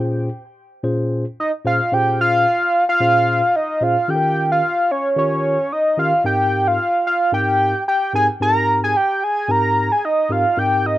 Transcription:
0.00 0.28 A#2 medium
0.00 0.28 C#4 medium
0.00 0.28 F4 medium
0.00 0.28 G#4 medium
0.00 0.28 C5 medium
0.83 1.24 A#2 medium
0.83 1.24 C#4 medium
0.83 1.24 F4 medium
0.83 1.24 G#4 medium
0.83 1.24 C5 medium
1.40 1.52 D#5 medium
1.65 1.79 A#2 medium
1.65 1.79 C#4 medium
1.65 1.79 F4 medium
1.65 1.79 G#4 medium
1.65 1.79 C5 medium
1.65 1.95 F5 medium
1.92 2.45 A#2 medium
1.92 2.45 C#4 medium
1.92 2.45 F4 medium
1.92 2.45 G#4 medium
1.92 2.45 C5 medium
1.92 2.20 G5 loud
2.21 2.84 F5 medium
2.89 3.57 F5 loud
3.00 3.40 A#2 medium
3.00 3.40 C#4 medium
3.00 3.40 F4 medium
3.00 3.41 G#4 medium
3.00 3.41 C5 medium
3.56 3.85 D#5 medium
3.81 3.95 A#2 medium
3.81 3.95 C#4 medium
3.81 3.95 F4 medium
3.81 3.95 G#4 medium
3.81 3.96 C5 medium
3.81 4.12 F5 medium
4.08 4.61 D#3 medium
4.08 4.61 C#4 medium
4.08 4.61 F4 medium
4.08 4.61 G4 medium
4.08 4.16 A4 medium
4.08 4.51 G5 loud
4.15 4.64 A#4 medium
4.52 4.93 F5 loud
4.91 5.17 C#5 loud
5.16 5.56 D#3 medium
5.16 5.56 C#4 medium
5.16 5.57 F4 medium
5.16 5.57 G4 medium
5.16 5.57 A#4 medium
5.16 5.74 C#5 medium
5.72 5.99 D#5 medium
5.97 6.11 D#3 medium
5.97 6.11 C#4 medium
5.97 6.12 F4 medium
5.97 6.12 G4 medium
5.97 6.12 A#4 medium
5.97 6.24 F5 medium
6.24 6.77 G#2 medium
6.24 6.77 C4 medium
6.24 6.77 D#4 medium
6.24 6.77 G4 medium
6.24 6.77 A#4 medium
6.24 6.69 G5 loud
6.67 7.06 F5 loud
7.07 7.32 F5 medium
7.32 7.73 G#2 medium
7.32 7.73 C4 medium
7.32 7.73 D#4 medium
7.32 7.73 G4 medium
7.32 7.73 A#4 medium
7.32 7.84 G5 loud
7.88 8.13 G5 medium
8.13 8.28 G#2 medium
8.13 8.28 C4 medium
8.13 8.28 D#4 medium
8.13 8.28 G4 medium
8.13 8.28 A#4 medium
8.13 8.27 G#5 loud
8.40 8.93 G#2 medium
8.40 8.93 C4 medium
8.40 8.93 D#4 medium
8.40 8.93 G4 medium
8.40 8.93 A#4 medium
8.40 8.80 A#5 loud
8.84 8.98 G#5 loud
8.97 9.25 G5 loud
9.24 9.52 G#5 loud
9.48 9.89 G#2 medium
9.48 9.89 C4 medium
9.48 9.89 D#4 medium
9.48 9.89 G4 medium
9.48 9.89 A#4 medium
9.48 9.93 A#5 loud
9.92 10.06 G#5 loud
10.05 10.33 D#5 medium
10.29 10.44 G#2 medium
10.29 10.44 C4 medium
10.29 10.44 D#4 medium
10.29 10.44 G4 medium
10.29 10.44 A#4 medium
10.29 10.60 F5 loud
10.57 10.98 G#2 medium
10.57 10.98 C4 medium
10.57 10.98 D#4 medium
10.57 10.98 G4 medium
10.57 10.98 A#4 medium
10.57 10.88 G5 loud
10.86 10.98 D#5 medium

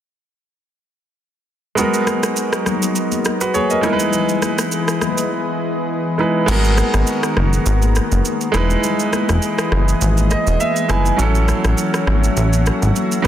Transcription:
1.75 3.81 F#3 medium
1.75 3.78 G#3 medium
1.75 3.79 B3 medium
1.75 6.44 B3 medium
1.75 3.81 D#4 medium
1.75 3.22 F#4 medium
1.75 6.44 G#4 medium
1.75 3.81 A#4 medium
1.75 low conga medium
1.75 shaker medium
1.80 3.23 A#4 medium
1.94 shaker medium
2.07 cross-stick medium
2.07 high conga medium
2.07 shaker medium
2.23 cross-stick loud
2.23 shaker medium
2.36 shaker medium
2.53 cross-stick medium
2.53 shaker medium
2.66 cross-stick medium
2.66 high conga medium
2.66 low conga medium
2.66 shaker medium
2.82 shaker medium
2.96 shaker medium
3.12 high conga medium
3.12 shaker medium
3.25 cross-stick medium
3.25 shaker medium
3.41 3.54 F#4 medium
3.41 3.54 B4 medium
3.41 shaker medium
3.54 3.70 G#4 medium
3.54 3.70 C#5 medium
3.54 high conga medium
3.54 shaker medium
3.70 3.85 A#4 medium
3.70 3.98 D#5 medium
3.70 shaker soft
3.81 6.46 E3 medium
3.81 6.14 G#3 medium
3.81 6.15 D#4 medium
3.81 6.15 E4 medium
3.81 6.46 B4 medium
3.81 6.46 D#5 medium
3.81 cross-stick medium
3.81 high conga medium
3.81 low conga medium
3.81 shaker medium
3.86 3.92 A#4 medium
3.93 6.19 B4 medium
4.00 shaker loud
4.13 low conga medium
4.13 shaker medium
4.29 shaker medium
4.42 cross-stick medium
4.42 high conga medium
4.42 shaker medium
4.58 cross-stick loud
4.58 shaker loud
4.72 shaker medium
4.88 cross-stick medium
4.88 shaker medium
5.01 cross-stick medium
5.01 high conga medium
5.01 low conga medium
5.01 shaker medium
5.18 shaker medium
6.18 6.45 G#3 medium
6.18 6.48 D#4 soft
6.18 6.49 E4 soft
6.18 6.49 B4 medium
6.46 6.82 G#1 loud
6.46 8.52 D#3 medium
6.46 8.49 G#3 medium
6.46 8.52 G#3 medium
6.46 8.50 B3 medium
6.46 8.52 B3 medium
6.46 8.52 F#4 medium
6.46 8.51 F#4 medium
6.46 8.52 A#4 medium
6.46 crash loud
6.46 low conga medium
6.46 shaker medium
6.51 8.52 A#4 medium
6.64 shaker medium
6.77 cross-stick medium
6.77 high conga medium
6.77 shaker medium
6.94 7.04 G#1 medium
6.94 cross-stick loud
6.94 high conga medium
6.94 shaker medium
7.07 shaker medium
7.23 cross-stick loud
7.23 shaker medium
7.37 7.58 F#1 loud
7.37 cross-stick medium
7.37 high conga medium
7.37 low conga medium
7.53 shaker medium
7.66 8.00 G#1 loud
7.66 shaker medium
7.82 high conga medium
7.82 shaker medium
7.96 cross-stick medium
7.96 shaker medium
8.12 8.21 F#1 medium
8.12 shaker medium
8.25 high conga medium
8.25 shaker medium
8.41 shaker medium
8.52 8.76 E1 loud
8.52 13.21 E3 medium
8.52 10.84 G#3 medium
8.52 11.16 G#3 medium
8.52 11.16 B3 medium
8.52 10.85 D#4 medium
8.52 10.86 E4 medium
8.52 11.16 G#4 medium
8.52 11.16 D#5 medium
8.52 cross-stick loud
8.52 high conga medium
8.52 low conga medium
8.52 shaker medium
8.57 10.87 B4 medium
8.70 shaker medium
8.84 low conga medium
8.84 shaker medium
9.00 shaker medium
9.13 cross-stick medium
9.13 high conga medium
9.13 shaker medium
9.29 9.39 E1 loud
9.29 cross-stick loud
9.29 high conga medium
9.29 shaker medium
9.42 shaker medium
9.59 cross-stick loud
9.59 shaker medium
9.72 9.94 F#1 loud
9.72 cross-stick medium
9.72 high conga medium
9.72 low conga medium
9.88 shaker medium
10.01 10.35 G#1 loud
10.01 shaker medium
10.18 high conga medium
10.18 shaker medium
10.31 10.58 D#5 medium
10.31 cross-stick medium
10.31 shaker medium
10.47 10.57 E1 medium
10.47 shaker medium
10.60 10.88 E5 medium
10.60 high conga medium
10.60 shaker medium
10.76 shaker medium
10.88 11.11 F#1 medium
10.88 11.18 G#3 medium
10.88 11.19 D#4 medium
10.88 11.18 E4 medium
10.88 11.20 B4 medium
10.88 11.17 G#5 medium
10.88 cross-stick loud
10.88 high conga medium
10.88 low conga medium
10.88 shaker medium
11.06 shaker medium
11.17 11.53 A1 loud
11.17 13.20 F#3 medium
11.17 13.28 F#3 medium
11.17 13.23 A3 medium
11.17 13.21 C#4 medium
11.17 13.23 C#4 medium
11.17 13.21 E4 medium
11.17 13.28 F#4 medium
11.17 low conga medium
11.17 shaker medium
11.22 13.22 A4 medium
11.35 shaker medium
11.48 cross-stick medium
11.48 high conga medium
11.48 shaker medium
11.65 11.74 A1 loud
11.65 cross-stick loud
11.65 high conga medium
11.65 shaker medium
11.78 shaker medium
11.94 cross-stick loud
11.94 shaker medium
12.07 12.29 G#1 medium
12.07 cross-stick medium
12.07 high conga medium
12.07 low conga medium
12.24 shaker medium
12.37 12.70 A1 loud
12.37 shaker medium
12.53 high conga medium
12.53 shaker medium
12.66 cross-stick medium
12.66 shaker medium
12.82 12.92 G#1 medium
12.82 shaker medium
12.96 high conga medium
12.96 shaker medium
13.12 shaker soft
13.22 13.28 D#3 medium
13.22 13.28 F#3 medium
13.22 13.28 B3 medium
13.22 high conga medium
13.22 low conga medium

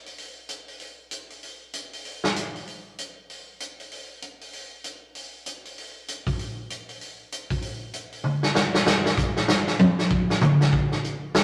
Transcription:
0.06 open hi-hat soft
0.18 open hi-hat soft
0.49 closed hi-hat soft
0.68 open hi-hat soft
0.80 open hi-hat soft
1.11 closed hi-hat soft
1.30 open hi-hat soft
1.43 open hi-hat soft
1.73 closed hi-hat soft
1.93 open hi-hat soft
2.05 open hi-hat soft
2.24 snare medium
2.36 closed hi-hat soft
2.56 open hi-hat soft
2.67 open hi-hat soft
2.98 closed hi-hat soft
3.30 open hi-hat soft
3.60 closed hi-hat medium
3.80 open hi-hat soft
3.92 open hi-hat soft
4.22 closed hi-hat soft
4.41 open hi-hat soft
4.53 open hi-hat soft
4.84 closed hi-hat soft
5.15 open hi-hat soft
5.46 closed hi-hat soft
5.65 open hi-hat soft
5.78 open hi-hat soft
6.08 closed hi-hat medium
6.27 kick medium
6.27 open hi-hat soft
6.39 open hi-hat soft
6.70 closed hi-hat soft
6.89 open hi-hat soft
7.01 open hi-hat soft
7.32 closed hi-hat medium
7.50 kick soft
7.50 open hi-hat soft
7.62 open hi-hat soft
7.93 closed hi-hat medium
8.12 open hi-hat soft
8.24 mid tom soft
8.43 snare soft
8.55 snare medium
8.74 snare medium
8.86 snare medium
9.06 snare medium
9.18 kick medium
9.18 hi-hat pedal medium
9.37 snare soft
9.48 snare medium
9.67 snare soft
9.79 hi-hat pedal medium
9.79 high tom medium
9.99 snare soft
10.11 kick medium
10.30 snare soft
10.41 hi-hat pedal medium
10.41 mid tom loud
10.61 snare soft
10.73 kick medium
10.92 snare soft
11.04 hi-hat pedal medium
11.35 snare medium

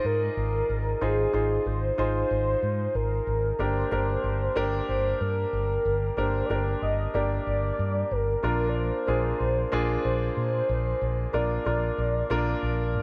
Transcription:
0.00 1.01 D#4 medium
0.00 1.02 F4 medium
0.00 1.02 G#4 medium
0.00 1.02 C5 medium
0.00 3.61 D5 medium
0.00 0.55 D#5 loud
0.04 0.28 G#2 loud
0.04 1.04 A#4 loud
0.37 0.60 G#1 loud
0.69 0.92 G#1 loud
1.01 1.25 G#1 loud
1.01 1.29 D#4 medium
1.01 1.29 F4 medium
1.01 1.30 G#4 medium
1.01 1.68 G#4 loud
1.01 1.30 C5 medium
1.33 1.57 G#1 loud
1.33 1.89 D#4 medium
1.33 1.89 F4 medium
1.33 1.90 G#4 medium
1.33 1.90 C5 medium
1.66 1.89 G#1 medium
1.66 1.98 C5 loud
1.98 2.21 G#1 medium
1.98 3.10 D#4 medium
1.98 3.10 F4 medium
1.98 3.10 G#4 medium
1.98 2.97 C5 loud
1.98 3.10 C5 medium
2.30 2.54 G#1 medium
2.62 2.86 G#2 medium
2.95 3.18 G#1 medium
2.95 3.62 A#4 loud
3.27 3.50 G#1 loud
3.59 3.82 G1 loud
3.59 3.87 A#3 medium
3.59 3.87 D4 medium
3.59 3.87 G4 medium
3.59 3.88 A#4 medium
3.59 4.88 C5 loud
3.91 4.15 G1 loud
3.91 4.47 A#3 medium
3.91 4.48 D4 medium
3.91 4.48 G4 medium
3.91 4.48 A#4 medium
4.23 4.47 G1 medium
4.56 4.79 G1 loud
4.56 5.68 A#3 medium
4.56 5.68 D4 medium
4.56 5.68 G4 medium
4.56 5.68 A#4 loud
4.89 5.12 G1 medium
4.89 5.23 C5 loud
5.21 5.44 G2 loud
5.21 6.20 A#4 loud
5.53 5.76 G1 loud
5.85 6.08 G1 loud
6.17 6.40 G1 loud
6.17 6.45 A#3 medium
6.17 6.45 D4 medium
6.17 6.46 G4 medium
6.17 6.46 A#4 medium
6.17 6.48 C5 loud
6.46 6.73 G1 medium
6.46 7.06 A#3 medium
6.46 7.06 D4 medium
6.46 6.56 D5 medium
6.50 7.06 G4 medium
6.50 7.06 A#4 medium
6.55 6.65 C5 medium
6.64 6.75 A#4 medium
6.74 6.82 C5 medium
6.82 7.05 G1 medium
6.82 7.12 D#5 medium
7.14 7.37 G1 medium
7.14 8.26 A#3 medium
7.14 8.26 D4 medium
7.14 8.26 G4 medium
7.14 8.26 A#4 medium
7.14 8.13 D5 loud
7.47 7.70 G1 loud
7.79 8.02 G2 medium
8.11 8.34 G1 medium
8.11 8.71 A#4 medium
8.43 8.90 A#1 loud
8.43 8.99 A#3 medium
8.43 8.99 D4 medium
8.43 8.99 F4 medium
8.43 9.00 A#4 medium
8.69 8.77 D5 medium
8.76 10.04 C5 loud
9.07 9.31 A#1 loud
9.07 9.63 A#3 medium
9.07 9.64 D4 medium
9.07 9.64 F4 medium
9.07 9.64 G#4 medium
9.40 9.63 A#1 loud
9.72 9.96 A#1 medium
9.72 10.84 A#3 medium
9.72 10.84 D4 medium
9.72 10.84 F4 medium
9.72 10.84 G#4 loud
10.05 10.28 A#1 loud
10.05 11.30 C5 loud
10.37 10.60 A#2 medium
10.69 10.92 A#1 loud
11.01 11.24 A#1 loud
11.33 11.57 A#1 loud
11.33 11.61 A#3 medium
11.33 11.61 D4 medium
11.33 11.62 F4 medium
11.33 11.62 A#4 medium
11.33 13.03 D5 loud
11.65 11.89 A#1 medium
11.65 12.22 A#3 medium
11.65 12.22 D4 medium
11.65 12.22 F4 medium
11.65 12.22 A#4 medium
11.98 12.21 A#1 loud
12.30 12.53 A#1 loud
12.30 13.03 A#3 medium
12.30 13.03 D4 medium
12.30 13.03 F4 medium
12.30 13.03 A#4 loud
12.62 12.96 A#1 medium
12.95 13.03 A#2 medium

